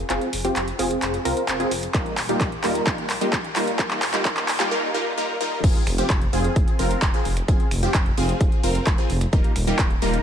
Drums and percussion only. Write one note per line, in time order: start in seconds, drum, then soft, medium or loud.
0.10 clap medium
0.10 closed hi-hat soft
0.21 closed hi-hat soft
0.33 open hi-hat loud
0.45 closed hi-hat medium
0.56 clap medium
0.56 closed hi-hat medium
0.68 closed hi-hat soft
0.79 open hi-hat loud
0.91 closed hi-hat medium
1.02 clap medium
1.02 closed hi-hat medium
1.14 closed hi-hat soft
1.25 open hi-hat loud
1.37 closed hi-hat soft
1.48 clap medium
1.48 closed hi-hat soft
1.60 closed hi-hat soft
1.71 open hi-hat loud
1.83 closed hi-hat medium
1.94 kick loud
1.94 clap medium
1.94 closed hi-hat soft
2.06 closed hi-hat soft
2.17 clap medium
2.17 open hi-hat loud
2.29 closed hi-hat soft
2.41 kick loud
2.41 clap medium
2.41 closed hi-hat medium
2.52 closed hi-hat soft
2.64 clap medium
2.64 open hi-hat loud
2.75 closed hi-hat medium
2.87 kick loud
2.87 clap medium
2.87 closed hi-hat medium
2.98 closed hi-hat soft
3.10 clap medium
3.10 open hi-hat loud
3.21 closed hi-hat soft
3.33 kick loud
3.33 clap medium
3.33 closed hi-hat soft
3.44 closed hi-hat soft
3.56 clap medium
3.56 open hi-hat loud
3.67 closed hi-hat soft
3.79 kick loud
3.79 clap medium
3.79 closed hi-hat soft
3.91 clap medium
3.91 closed hi-hat soft
4.02 clap medium
4.02 open hi-hat loud
4.14 clap medium
4.14 closed hi-hat medium
4.25 kick loud
4.25 clap loud
4.25 closed hi-hat medium
4.37 clap medium
4.37 closed hi-hat soft
4.48 clap loud
4.48 open hi-hat loud
4.60 clap medium
4.60 closed hi-hat medium
5.29 high tom soft
5.41 mid tom medium
5.52 mid tom medium
5.64 kick loud
5.64 closed hi-hat medium
5.64 crash loud
5.75 closed hi-hat soft
5.87 finger snap medium
5.87 open hi-hat loud
5.98 closed hi-hat medium
6.10 kick loud
6.10 clap loud
6.10 closed hi-hat medium
6.21 closed hi-hat soft
6.33 open hi-hat medium
6.45 closed hi-hat medium
6.56 kick loud
6.56 closed hi-hat medium
6.68 closed hi-hat soft
6.79 open hi-hat loud
6.91 closed hi-hat medium
7.02 kick loud
7.02 clap loud
7.02 closed hi-hat medium
7.14 closed hi-hat soft
7.25 open hi-hat medium
7.37 finger snap medium
7.37 closed hi-hat medium
7.48 kick loud
7.48 closed hi-hat medium
7.60 closed hi-hat soft
7.71 finger snap medium
7.71 open hi-hat loud
7.83 closed hi-hat medium
7.94 kick loud
7.94 clap loud
7.94 closed hi-hat medium
8.06 closed hi-hat soft
8.17 open hi-hat medium
8.29 closed hi-hat medium
8.40 kick loud
8.40 closed hi-hat medium
8.52 closed hi-hat soft
8.63 open hi-hat loud
8.75 closed hi-hat medium
8.87 kick loud
8.87 clap loud
8.87 closed hi-hat medium
8.98 closed hi-hat soft
9.10 open hi-hat loud
9.21 finger snap medium
9.21 closed hi-hat medium
9.33 kick loud
9.33 closed hi-hat soft
9.44 closed hi-hat soft
9.56 finger snap medium
9.56 open hi-hat loud
9.67 closed hi-hat medium
9.79 kick loud
9.79 clap loud
9.79 closed hi-hat medium
9.90 closed hi-hat soft
10.02 open hi-hat loud
10.14 closed hi-hat medium